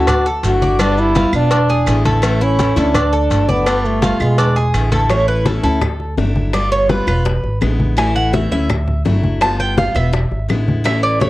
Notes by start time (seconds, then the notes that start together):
Already playing: D2 F#4
0.07 D4, muted steel-string acoustic guitar stroke, cowbell, high conga, low conga, claves, maracas
0.26 A4, high conga, maracas
0.43 G1 F#3 A3 D4 E4 F#4, cowbell, high conga, maracas
0.62 D5, high conga, maracas
0.79 G3 B3 D4 F4, cowbell, high conga, claves, maracas
0.98 E4, high conga, maracas
1.15 G3 B3 F4, cowbell, high conga, maracas
1.33 E1 B3 D4 F4, claves, maracas
1.51 D4, muted steel-string acoustic guitar stroke, cowbell, high conga, maracas
1.69 G#4, high conga, maracas
1.86 A1 D3 G#3 B3 E4, cowbell, high conga, claves, maracas
2.05 A4, cowbell, high conga, maracas
2.22 E3 A3 C#4 E4, cowbell, high conga, claves, maracas
2.41 C#4 E4, high conga, maracas
2.59 E3 A3 C#4 E4, cowbell, high conga, maracas
2.76 D2 A3 C#4 D4 E4 A4, cowbell, high conga, maracas
2.94 D4, muted steel-string acoustic guitar stroke, cowbell, high conga, low conga, claves, maracas
3.13 A4, high conga, maracas
3.30 G1 F#3 A3 D4 E4, cowbell, high conga, maracas
3.49 B3 D5, high conga, maracas
3.66 G3 B3 D4 F4, cowbell, claves, maracas
3.85 A3, high conga, maracas
4.02 G3 B3 F4, cowbell, high conga, maracas
4.20 E1 G#3 B3 F4, claves, maracas
4.38 D4, muted steel-string acoustic guitar stroke, cowbell, high conga, maracas
4.56 G#4, high conga, maracas
4.74 A1 D3 G#3 B3 E4, cowbell, high conga, claves, maracas
4.92 A4, cowbell, high conga, maracas
5.09 E3 A3 C#4 E4 C#5, high bongo, high conga, claves
5.28 B4, high conga
5.45 E3 A3 C#4 E4 A4, high bongo, high conga
5.63 D2 A3 C#4 E4 A4, high bongo, high conga
5.81 muted steel-string acoustic guitar stroke, high bongo, high conga, low conga, claves
6.00 high bongo, high conga
6.17 G1 F#3 A3 D4 E4, high bongo, low bongo, high conga
6.36 high bongo, high conga
6.53 G3 B3 F4 D5, high bongo, claves
6.72 C#5, high conga
6.89 G3 B3 F4 B4, high bongo, high conga
7.07 E1 B3 F4 B4, high bongo, claves
7.25 muted steel-string acoustic guitar stroke, high bongo, high conga
7.43 G#1, high bongo, high conga
7.61 A1 D3 G#3 B3 E4, high bongo, low bongo, high conga, claves
7.79 high bongo, high conga
7.97 E3 A3 C#4 E4 G#5, high bongo, claves
8.15 F#5, high conga
8.33 E3 A3 C#4 E4 E5, high bongo, high conga
8.51 D2 A3 C#4 E4 E5, high bongo, high conga
8.69 muted steel-string acoustic guitar stroke, high bongo, high conga, low conga, claves
8.88 high bongo, high conga, low conga
9.05 G1 F#3 A3 D4 E4, high bongo, low bongo, high conga
9.24 high bongo, high conga
9.41 G3 B3 F4 A5, high bongo, high conga, claves
9.59 G5, high conga
9.77 G3 B3 F4 F5, high bongo, high conga
9.95 E1 B3 F4 E5, high bongo, claves
10.13 muted steel-string acoustic guitar stroke, high bongo, high conga
10.31 G#1, high bongo, high conga
10.48 A1 D3 G#3 B3 E4, high bongo, low bongo, high conga, claves
10.68 high bongo, high conga
10.84 E3 A3 C#4 E4 E5, high bongo, high conga, claves
11.03 D5, high conga
11.20 E3 A3 C#4 E4 C#5, high bongo, high conga